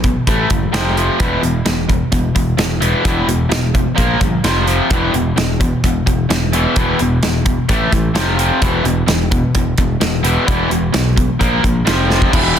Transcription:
Already playing: picked electric bass B1
0.04 overdriven electric guitar E2 B2, kick, closed hi-hat
0.27 picked electric bass A1, overdriven electric guitar A2 E3 A3, kick, closed hi-hat
0.50 picked electric bass F#1, overdriven electric guitar A2 E3, kick, closed hi-hat
0.72 picked electric bass F1, overdriven electric guitar F2 C3 F3, snare, closed hi-hat
0.96 overdriven electric guitar F2 C3 F3, closed hi-hat
1.19 picked electric bass E1, overdriven electric guitar E2 B2 E3, kick, closed hi-hat
1.42 picked electric bass E1, overdriven electric guitar E2 B2, closed hi-hat
1.66 picked electric bass E1, overdriven electric guitar E2 B2, snare, closed hi-hat
1.89 overdriven electric guitar E2 B2, kick, closed hi-hat
2.12 picked electric bass E1, overdriven electric guitar E2 B2, kick, closed hi-hat
2.35 picked electric bass E1, overdriven electric guitar E2 B2, kick, closed hi-hat
2.57 picked electric bass E1, overdriven electric guitar E2 B2, snare, closed hi-hat
2.80 overdriven electric guitar E2 B2 E3, closed hi-hat
3.03 picked electric bass E1, overdriven electric guitar E2 B2 E3, kick, closed hi-hat
3.27 picked electric bass E1, overdriven electric guitar E2 B2, closed hi-hat
3.49 picked electric bass E1, overdriven electric guitar E2 B2, snare, closed hi-hat
3.75 overdriven electric guitar E2 B2, kick, closed hi-hat
3.96 picked electric bass A#1, overdriven electric guitar A#2 F3 A#3, kick, closed hi-hat
4.21 picked electric bass G1, overdriven electric guitar A#2 F3, kick, closed hi-hat
4.44 picked electric bass F1, overdriven electric guitar F2 C3 F3, snare, closed hi-hat
4.66 overdriven electric guitar F2 C3 F3, closed hi-hat
4.90 picked electric bass E1, overdriven electric guitar E2 B2 E3, kick, closed hi-hat
5.14 picked electric bass E1, overdriven electric guitar E2 B2, closed hi-hat
5.36 picked electric bass E1, overdriven electric guitar E2 B2, snare, closed hi-hat
5.60 overdriven electric guitar E2 B2, kick, closed hi-hat
5.84 picked electric bass E1, overdriven electric guitar E2 B2, kick, closed hi-hat
6.06 picked electric bass E1, overdriven electric guitar E2 B2, kick, closed hi-hat
6.29 picked electric bass E1, overdriven electric guitar E2 B2, snare, closed hi-hat
6.53 overdriven electric guitar E2 B2 E3, closed hi-hat
6.76 picked electric bass E1, overdriven electric guitar E2 B2 E3, kick, closed hi-hat
6.99 picked electric bass E1, overdriven electric guitar E2 B2, closed hi-hat
7.22 picked electric bass E1, overdriven electric guitar E2 B2, snare, closed hi-hat
7.45 overdriven electric guitar E2 B2, kick, closed hi-hat
7.68 picked electric bass A1, overdriven electric guitar A2 E3 A3, kick, closed hi-hat
7.91 picked electric bass A1, overdriven electric guitar A2 E3, kick, closed hi-hat
8.14 picked electric bass F1, overdriven electric guitar F2 C3 F3, snare, closed hi-hat
8.38 overdriven electric guitar F2 C3 F3, closed hi-hat
8.61 picked electric bass E1, overdriven electric guitar E2 B2 E3, kick, closed hi-hat
8.84 picked electric bass E1, overdriven electric guitar E2 B2, closed hi-hat
9.07 picked electric bass E1, overdriven electric guitar E2 B2, snare, closed hi-hat
9.31 overdriven electric guitar E2 B2, kick, closed hi-hat
9.55 picked electric bass E1, overdriven electric guitar E2 B2, kick, closed hi-hat
9.78 picked electric bass E1, overdriven electric guitar E2 B2, kick, closed hi-hat
10.00 picked electric bass E1, overdriven electric guitar E2 B2, snare, closed hi-hat
10.23 overdriven electric guitar E2 B2 E3, closed hi-hat
10.46 picked electric bass E1, overdriven electric guitar E2 B2 E3, kick, closed hi-hat
10.70 picked electric bass E1, overdriven electric guitar E2 B2, closed hi-hat
10.93 picked electric bass B1, overdriven electric guitar E2 B2, snare, closed hi-hat
11.16 overdriven electric guitar E2 B2, kick, closed hi-hat
11.39 picked electric bass A#1, overdriven electric guitar A#2 F3 A#3, kick, closed hi-hat
11.63 picked electric bass A#1, overdriven electric guitar A#2 F3, kick, closed hi-hat
11.85 picked electric bass F1, overdriven electric guitar F2 C3 F3, snare, closed hi-hat
12.08 overdriven electric guitar F2 C3 F3, snare
12.22 kick
12.31 picked electric bass E1, overdriven electric guitar E2 B2 E3, kick, crash
12.56 picked electric bass E1

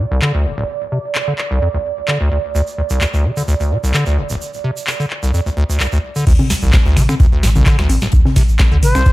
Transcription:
Already playing: analog synth pad D5
0.11 acid bass C2
0.22 acid bass D3, clap
0.34 acid bass D2
0.46 acid bass D1
0.58 acid bass D1
0.92 acid bass C3
1.15 clap
1.28 acid bass D3
1.38 clap
1.51 acid bass C2
1.62 acid bass F2
1.74 acid bass D2
2.08 acid bass D3, clap
2.21 acid bass D2
2.55 acid bass D2, shaker
2.67 shaker
2.78 acid bass D2
2.90 acid bass C2, shaker
3.01 acid bass D2, clap, shaker
3.14 acid bass D2, shaker
3.25 acid bass D3
3.37 acid bass D3, shaker
3.48 acid bass D2, shaker
3.60 acid bass D2, shaker
3.71 acid bass C3
3.84 acid bass C2, shaker
3.94 acid bass D3, clap, shaker
4.06 acid bass D2, shaker
4.18 acid bass D1
4.30 acid bass D1, shaker
4.41 shaker
4.53 shaker
4.64 acid bass C3
4.77 shaker
4.87 clap, shaker
5.00 acid bass D3, shaker
5.10 clap
5.23 acid bass C2, shaker
5.34 acid bass F2, shaker
5.46 acid bass D2, shaker
5.57 acid bass D2
5.69 acid bass D2, shaker
5.80 acid bass C2, clap, shaker
5.92 acid bass D2, shaker
6.16 acid bass D3, shaker
6.27 acid bass D2, sub bass D2, kick, closed hi-hat, crash, shaker
6.39 closed hi-hat, mid tom, high conga
6.50 acid bass D2, snare, closed hi-hat, open hi-hat, shaker
6.62 sub bass A1, acid bass C2, shaker
6.73 acid bass D2, kick, snare, clap, closed hi-hat, high conga, shaker
6.86 sub bass D2, acid bass D2
6.97 sub bass A1, acid bass D3, finger snap, snare, closed hi-hat, open hi-hat, mid tom, shaker
7.09 acid bass D3, finger snap, high conga, shaker
7.20 acid bass D2, kick, closed hi-hat, shaker
7.32 acid bass D2
7.43 sub bass A1, acid bass C3, snare, closed hi-hat, open hi-hat, shaker
7.55 acid bass C2, mid tom, high conga, shaker
7.66 acid bass D3, kick, snare, clap, closed hi-hat, shaker
7.78 acid bass D2, finger snap, snare
7.89 acid bass D1, closed hi-hat, open hi-hat, high conga, shaker
8.01 acid bass D1, snare, shaker
8.12 sub bass D2, kick, closed hi-hat, shaker
8.25 snare, mid tom, high conga
8.36 acid bass C3, kick, snare, closed hi-hat, open hi-hat, shaker
8.49 sub bass A1, shaker
8.59 kick, snare, clap, closed hi-hat, high conga, shaker
8.72 sub bass D2, acid bass D3
8.83 sub bass A1, flute C5, closed hi-hat, open hi-hat, mid tom, shaker
8.95 acid bass C2, finger snap, snare, high conga, shaker
9.06 acid bass F2, kick, closed hi-hat, shaker

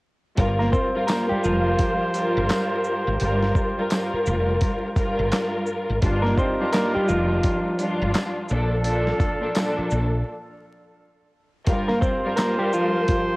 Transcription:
0.36 fretless electric bass G1, string section G2 G3 F4 A#4, horn section F4 G4 C5, kick, closed hi-hat
0.59 clean electric guitar A#3 A#4, snare
0.72 clean electric guitar C4 C5, kick, shaker
0.93 string section G2 G3 F4 A#4
1.07 string section G2 G3 F4 A#4, clean electric guitar A#3 A#4, snare, clap, closed hi-hat, tambourine
1.29 clean electric guitar G3 G4, muted fretless electric bass stroke
1.44 fretless electric bass F1, clean electric guitar F3 F4, shaker
1.79 kick, closed hi-hat
2.13 string section G2 G3 F4 A#4, closed hi-hat, shaker
2.37 fretless electric bass G1
2.49 snare, clap, closed hi-hat, tambourine
2.84 shaker
3.07 fretless electric bass G#1
3.20 fretless electric bass G1, string section G2 G3 F4 A#4, closed hi-hat
3.43 snare
3.55 kick, shaker
3.76 string section G2 G3 F4 A#4
3.90 string section G2 G3 F4 A#4, snare, clap, closed hi-hat, tambourine
4.13 muted fretless electric bass stroke
4.26 fretless electric bass F1, shaker
4.61 kick, closed hi-hat
4.96 string section G2 G3 F4 A#4, kick, closed hi-hat, shaker
5.19 fretless electric bass G1
5.32 snare, clap, closed hi-hat, tambourine
5.66 shaker
5.90 fretless electric bass G#1
6.00 fretless electric bass G1, string section G2 G3 D4 F4, horn section D#4 G4 A#4, kick, closed hi-hat
6.22 clean electric guitar A#3 A#4, snare
6.38 clean electric guitar C4 C5, kick, shaker
6.58 string section G2 G3 D4 F4
6.72 string section G2 G3 D4 F4, clean electric guitar A#3 A#4, snare, clap, closed hi-hat, tambourine
6.95 clean electric guitar G3 G4, muted fretless electric bass stroke
7.08 fretless electric bass F1, clean electric guitar F3 F4, shaker
7.43 kick, closed hi-hat
7.77 string section G2 G3 D4 F4, closed hi-hat, shaker
8.02 fretless electric bass G1
8.14 snare, clap, closed hi-hat, tambourine
8.48 fretless electric bass A#1, string section A#2 F3 D4 A4, horn section D4 F4 A4, shaker
8.84 string section A#2 F3 D4 A4, closed hi-hat
9.07 snare
9.20 kick, closed hi-hat, shaker
9.40 string section A#2 F3 D4 A4
9.54 string section A#2 F3 D4 A4, snare, clap, closed hi-hat, tambourine
9.78 muted fretless electric bass stroke
9.90 fretless electric bass A#1, shaker
11.66 string section G2 G3 F4 A#4, horn section F4 G4 C5, kick, closed hi-hat
11.88 clean electric guitar A#3 A#4, snare
12.01 clean electric guitar C4 C5, kick, shaker
12.23 string section G2 G3 F4 A#4
12.36 string section G2 G3 F4 A#4, clean electric guitar A#3 A#4, snare, clap, closed hi-hat, tambourine
12.59 clean electric guitar G3 G4
12.73 clean electric guitar F3 F4, shaker
13.08 kick, closed hi-hat

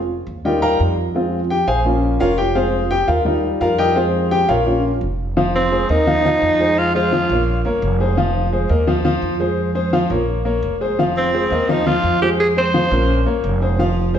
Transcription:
Already playing: upright bass F1
0.27 upright bass D#2
0.45 grand piano G3 D#4 F4 G4 A#4 D#5 G5
0.62 grand piano A#4 F5 G5 A#5
0.80 upright bass F2
1.15 grand piano G#3 C4 F4
1.50 grand piano G4 G5
1.67 upright bass A#1, grand piano G#4 C5 F5 G#5
1.85 grand piano A#3 C#4 F4
2.20 upright bass F1, grand piano F4 A#4 C#5 F5
2.38 grand piano G4 G5
2.55 grand piano G#3 C4 F4 G#4 C5 F5
2.91 grand piano G4 G5
3.08 upright bass D#2, grand piano F4 A#4 F5
3.25 grand piano G3 D#4 F4
3.61 upright bass F2, grand piano F4 A#4 F5
3.78 grand piano G4 A#4 D#5 G5
3.95 grand piano G#3 C4 F4 G#4 C5 F5
4.31 grand piano G4 G5
4.48 upright bass A#1, grand piano F4 A#4 C#5 F5
4.66 grand piano A#3 C#4 F4
5.01 upright bass F1
5.37 grand piano F3 F4 F5
5.56 tenor saxophone C4
5.72 grand piano G#3 G#4 C5
5.89 upright bass D#2, grand piano A#3 A#4 D#5, tenor saxophone D#4
6.07 grand piano F3 F4 F5
6.25 grand piano F3 F4 F5
6.42 upright bass F2
6.60 grand piano G#3 G#4 C5
6.78 tenor saxophone F4
6.95 grand piano G#3 G#4 C5, tenor saxophone F4
7.12 grand piano F3 F4 F5
7.29 upright bass A#1, grand piano A#3 A#4 C#5
7.65 upright bass G1, grand piano A#3 A#4 C#5
7.82 upright bass F1
8.00 grand piano G#3 G#4 C5
8.17 grand piano F3 F4 F5
8.53 grand piano G#3 G#4 C5
8.69 upright bass D#2, grand piano A#3 A#4 D#5
8.87 grand piano F3 F4 F5
9.05 grand piano F3 F4 F5
9.22 upright bass F2
9.40 grand piano G#3 G#4 C5
9.75 grand piano G#3 G#4 C5
9.93 grand piano F3 F4 F5
10.10 upright bass A#1, grand piano A#3 A#4 C#5
10.45 grand piano A#3 A#4 C#5
10.63 upright bass F1
10.81 grand piano G#3 G#4 C5
10.99 grand piano F3 F4 F5
11.17 tenor saxophone C4
11.34 grand piano G#3 G#4 C5
11.51 upright bass D#2, grand piano A#3 A#4 D#5
11.69 grand piano F3 F4 F5, tenor saxophone D#4
11.86 grand piano F3 F4 F5, tenor saxophone F4
12.03 upright bass F2
12.22 grand piano G#3 G#4 C5, tenor saxophone G4
12.40 tenor saxophone G#4
12.57 grand piano G#3 G#4 C5, tenor saxophone C5
12.74 grand piano F3 F4 F5
12.91 upright bass A#1, grand piano A#3 C#4 A#4
13.26 upright bass G1, grand piano A#3 A#4 C#5
13.44 upright bass F1
13.62 grand piano G#3 G#4 C5
13.79 grand piano F3 F4 F5
14.14 grand piano G#3 G#4 C5

